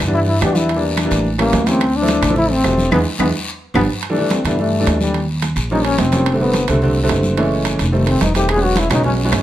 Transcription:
0.00 upright bass G2, high conga, low conga, high timbale, short guiro, claves
0.07 upright piano E3 G3 B3 D4
0.13 trombone E4, high conga, long guiro
0.27 trombone E4, high conga
0.41 upright bass E2, upright piano E3 G3 B3 D4, trombone G4, high conga, high timbale, low timbale, short guiro, claves
0.55 trombone E4, high conga, short guiro
0.69 high conga, high timbale, long guiro
0.76 upright piano E3 G3 A#3 D4
0.83 high conga
0.97 trombone D4, high conga, high timbale, low timbale, short guiro, claves
1.05 upright piano E3 G3 A#3 D4
1.11 upright bass A1, high timbale, short guiro
1.25 high conga, long guiro
1.38 upright piano E3 G3 A#3 C#4, trombone A#3, high conga, high timbale, claves
1.52 upright bass D2, high conga, high timbale, low timbale, short guiro
1.66 upright piano E3 G3 A#3 C#4, trombone C4, high conga, high timbale, short guiro
1.80 high conga, high timbale, long guiro, claves
1.94 trombone D4, high conga
2.02 upright piano F3 A3 C4 E4
2.08 high conga, high timbale, low timbale, short guiro
2.21 upright bass A1, high conga, low conga, high timbale, short guiro, claves
2.30 upright piano F3 A3 C4 E4
2.36 trombone E4, high conga, low conga, long guiro
2.50 trombone C4, high conga
2.64 upright bass E1, upright piano F3 A3 C4 G4, high conga, high timbale, low timbale, short guiro, claves
2.78 high conga, short guiro
2.91 upright bass E2, upright piano E3 G#3 B3, trombone B3, high conga, high timbale, long guiro, claves
3.19 upright bass E2, upright piano E3 G#3 B3, trombone B3, high conga, high timbale, long guiro, claves
3.74 upright bass G1, upright piano F3 G3 B3, trombone B3, high conga, high timbale, long guiro, claves
4.03 high conga, high timbale, long guiro
4.09 upright piano E3 G3 A3 D4
4.16 upright piano E3 G3 A3 D4, high conga
4.30 trombone C4, high conga, high timbale, low timbale, short guiro
4.44 upright bass G2, upright piano E3 G3 A3 D4, trombone B3, high conga, low conga, high timbale, short guiro
4.58 upright piano E3 G3 A3 D4, trombone A3, high conga, long guiro
4.72 high conga
4.80 upright piano E3 G3 A3 D4
4.86 upright bass D#2, high conga, high timbale, low timbale, short guiro
5.00 trombone G3, high conga, short guiro
5.14 high conga, high timbale, long guiro
5.28 high conga
5.42 high conga, high timbale, low timbale, short guiro
5.56 upright bass A#1, high timbale, short guiro
5.70 upright piano F3 G3 A#3 C#4, trombone D#4, high conga, long guiro
5.83 trombone C#4, high conga, high timbale
5.98 upright bass F1, trombone C4, high conga, high timbale, low timbale, short guiro
6.12 upright piano F3 G3 A#3 C#4, high conga, high timbale, short guiro
6.26 high timbale, long guiro
6.33 upright piano D3 G3 A3 C4
6.40 upright piano D3 G3 A3 C4, trombone B3, high conga
6.53 high conga, high timbale, low timbale, short guiro
6.68 upright bass C2, upright piano D3 G3 A3 C4, high conga, low conga, high timbale, short guiro
6.82 upright piano D3 G3 A3 C4, high conga, low conga, long guiro
6.96 high conga
7.03 upright piano D3 G3 A3 C4
7.09 upright bass F#1, high conga, high timbale, low timbale, short guiro
7.23 high conga, short guiro
7.37 upright piano E3 G#3 A3 C#4, high conga, high timbale, long guiro
7.51 high conga
7.65 high conga, high timbale, low timbale, short guiro
7.79 upright bass F1, high timbale, short guiro
7.92 upright piano D#3 G3 A3 C4, trombone A3, high conga, long guiro
8.07 trombone C4, high conga, high timbale
8.21 upright bass E1, trombone D#4, high conga, high timbale, low timbale, short guiro
8.34 upright piano D#3 G3 A3 C4, trombone G4, high conga, high timbale, short guiro
8.49 trombone G#4, high timbale, long guiro, claves
8.56 upright piano F#3 G#3 B3 C#4
8.62 upright piano F#3 G#3 B3 C#4, trombone F#4, high conga
8.75 trombone E4, high conga, high timbale, low timbale, short guiro
8.90 upright bass B1, upright piano F#3 G#3 B3 C#4, trombone D#4, high conga, low conga, high timbale, short guiro, claves
9.04 upright piano F#3 G#3 B3 C#4, trombone C#4, high conga, low conga, long guiro
9.17 high conga
9.24 upright piano F#3 G#3 B3 C#4
9.32 upright bass G1, high conga, high timbale, low timbale, short guiro, claves

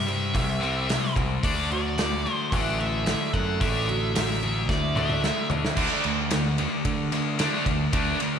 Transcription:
Already playing: picked electric bass G2, steel-string acoustic guitar C3 G3 E4, lead electric guitar E5
0.07 distorted electric guitar C3 G3, steel-string acoustic guitar C4
0.34 picked electric bass C2, distorted electric guitar C3 G3, steel-string acoustic guitar E4, kick, open hi-hat
0.61 distorted electric guitar C3 G3 C4
0.88 distorted electric guitar C3 G3, snare, open hi-hat
1.16 picked electric bass C2, distorted electric guitar C3 G3, steel-string acoustic guitar C4, kick
1.43 picked electric bass D2, distorted electric guitar D3 A3 D4, lead electric guitar D5, kick, open hi-hat
1.70 distorted electric guitar D3 A3, steel-string acoustic guitar F#3, lead electric guitar D5
1.98 distorted electric guitar D3 A3, steel-string acoustic guitar F#3, snare, open hi-hat
2.26 distorted electric guitar D3 A3
2.33 lead electric guitar C5
2.52 picked electric bass A1, distorted electric guitar D3 A3 D4, steel-string acoustic guitar E4, lead electric guitar F#5, kick, open hi-hat
2.79 distorted electric guitar D3 A3, lead electric guitar E5
3.06 distorted electric guitar D3 A3, snare, open hi-hat
3.33 picked electric bass F#2, distorted electric guitar D3 A3, lead electric guitar F#5, kick
3.60 picked electric bass A1, distorted electric guitar D3 A3 D4, lead electric guitar E5, kick, open hi-hat
3.88 distorted electric guitar D3 A3, steel-string acoustic guitar F#3
4.15 distorted electric guitar D3 A3, steel-string acoustic guitar F#3, lead electric guitar E5, snare, open hi-hat
4.43 distorted electric guitar D3 A3
4.69 picked electric bass D2, distorted electric guitar D3 A3, steel-string acoustic guitar E4, lead electric guitar D5, kick, snare
4.95 distorted electric guitar D3 A3 D4, lead electric guitar E5, mid tom
5.09 mid tom
5.23 distorted electric guitar D3 A3, snare
5.50 picked electric bass D2, distorted electric guitar D3 A3, floor tom
5.65 snare
5.76 picked electric bass D2, distorted electric guitar D3 A3 D4, kick, crash
6.04 picked electric bass D2, distorted electric guitar D3 A3, ride
6.31 distorted electric guitar D3 A3, snare, ride
6.58 distorted electric guitar D3 A3, ride
6.85 picked electric bass D3, distorted electric guitar D3 A3, kick, ride
7.12 distorted electric guitar D3 A3, ride
7.39 distorted electric guitar D3 A3 D4, snare, ride
7.66 picked electric bass D2, distorted electric guitar D3 A3, kick, ride
7.93 picked electric bass D2, distorted electric guitar D3 A3 D4, kick, ride
8.19 distorted electric guitar D3 A3, ride

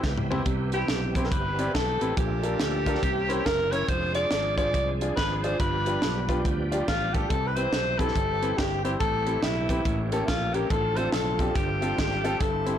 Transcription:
Already playing: tonewheel organ E3 G3 B3 C4 G4, french horn section G3 E4 B4
0.03 fingered electric bass C#2, kick, snare
0.18 mid tom
0.30 grand piano C4 E4 G4 C5, floor tom
0.46 fingered electric bass C2, grand piano C3, kick, closed hi-hat
0.72 grand piano C4 E4 G4 B4, alto saxophone G4, closed hi-hat
0.88 fingered electric bass B1, snare, closed hi-hat
1.15 grand piano C4 E4 G4 C5, kick, closed hi-hat
1.24 alto saxophone A#4, snare
1.30 fingered electric bass G1, alto saxophone B4, kick, closed hi-hat
1.58 grand piano C4 E4 G4 D5, closed hi-hat
1.74 fingered electric bass B1, alto saxophone A4, kick, snare, closed hi-hat
2.01 fingered electric bass A1, grand piano C4 E4 G4 B4, closed hi-hat
2.16 fingered electric bass A#1, grand piano A#2, tonewheel organ F3 A3 A#3 D4 A4, french horn section D4 F4 A4, alto saxophone G4, kick, closed hi-hat
2.43 grand piano D4 F4 A4 A#4, closed hi-hat
2.60 fingered electric bass D2, snare, closed hi-hat
2.86 grand piano D4 F4 A4 A#4, kick, closed hi-hat
2.95 snare
3.03 fingered electric bass C2, french horn section C3 E4 C#5, grand piano C3, tonewheel organ E3 A#3 C4 C#4 G4, kick, closed hi-hat
3.29 grand piano C#4 E4 A#4 C5, closed hi-hat
3.45 fingered electric bass F#1, alto saxophone A#4, kick, snare, closed hi-hat
3.72 grand piano C#4 E4 A#4 C#5, alto saxophone C#5, closed hi-hat
3.88 fingered electric bass F1, tonewheel organ F3 G#3 D4 G#4, french horn section G#3 C4 D4 F4, alto saxophone C5, kick, closed hi-hat
4.15 grand piano D4 F4 G#4 C5, alto saxophone D5, closed hi-hat
4.31 fingered electric bass G#1, snare, closed hi-hat
4.57 grand piano D4 F4 G#4 C5, alto saxophone D5, kick, closed hi-hat
4.74 fingered electric bass C2, kick, closed hi-hat
5.01 grand piano D4 F4 G#4 D5, closed hi-hat
5.16 fingered electric bass G#1, alto saxophone B4, kick, snare, closed hi-hat
5.36 alto saxophone B4
5.43 grand piano D4 F4 G#4 D5, alto saxophone C5, closed hi-hat
5.59 fingered electric bass G1, grand piano G2, tonewheel organ G3 B3 G4, french horn section G3, alto saxophone B4, kick, closed hi-hat
5.86 grand piano D4 F4 G4 B4, closed hi-hat
6.02 fingered electric bass B1, snare, closed hi-hat
6.29 grand piano D4 F4 G4 B4, kick, closed hi-hat
6.45 fingered electric bass D2, kick, closed hi-hat
6.72 grand piano D4 F4 G4 D5, closed hi-hat
6.88 fingered electric bass A1, alto saxophone F4, kick, snare, closed hi-hat
7.14 grand piano D4 F4 G4 A4, alto saxophone G4, kick, closed hi-hat
7.29 fingered electric bass C2, grand piano C3, tonewheel organ E3 C4, french horn section C4 E4, alto saxophone A4, kick, closed hi-hat
7.47 alto saxophone B4
7.56 grand piano C4 E4 G4 B4, alto saxophone C5, closed hi-hat
7.73 fingered electric bass B1, snare, closed hi-hat
7.99 grand piano C4 E4 G4 B4, alto saxophone A4, kick, closed hi-hat
8.08 snare
8.15 fingered electric bass G1, kick, closed hi-hat
8.42 grand piano C4 E4 G4 B4, closed hi-hat
8.57 fingered electric bass G1, alto saxophone G4, kick, snare, closed hi-hat
8.84 grand piano C4 E4 G4 C5, alto saxophone G4, closed hi-hat
9.00 fingered electric bass A1, grand piano A2, tonewheel organ A3, french horn section E4 A4, alto saxophone A4, kick, closed hi-hat
9.26 grand piano C4 E4 G4 A4, closed hi-hat
9.42 fingered electric bass B1, alto saxophone E4, snare, closed hi-hat
9.69 grand piano C4 E4 G4 B4, kick, closed hi-hat
9.85 fingered electric bass A1, grand piano A2, tonewheel organ A#3 C#4, french horn section C#4 A#4, kick, closed hi-hat
10.12 grand piano A#3 C#4 G4 A4, closed hi-hat
10.25 fingered electric bass A#1, alto saxophone E4 F4, kick, snare, closed hi-hat
10.54 grand piano A#3 C#4 G4 A#4, alto saxophone G4, closed hi-hat
10.70 fingered electric bass A1, grand piano A2, tonewheel organ D3 F3 C4 F4, french horn section F3 C4 D4, alto saxophone A4, kick, closed hi-hat
10.96 grand piano C4 D4 F4 A4, alto saxophone C5, closed hi-hat
11.12 fingered electric bass B1, alto saxophone A4, snare, closed hi-hat
11.39 grand piano C4 D4 F4 G4, kick, closed hi-hat
11.55 fingered electric bass G1, grand piano G2, french horn section G3 C4 F4, tonewheel organ G3, alto saxophone G4, kick, closed hi-hat
11.82 grand piano C4 F4 G4 A4, closed hi-hat
11.98 fingered electric bass G#1, kick, snare, closed hi-hat
12.11 snare
12.24 grand piano C4 F4 G4 A4, closed hi-hat
12.40 fingered electric bass G1, grand piano G2, french horn section E3 G3 E4, tonewheel organ E4, alto saxophone A4, kick, closed hi-hat
12.66 grand piano C4 E4 G4 C5, closed hi-hat

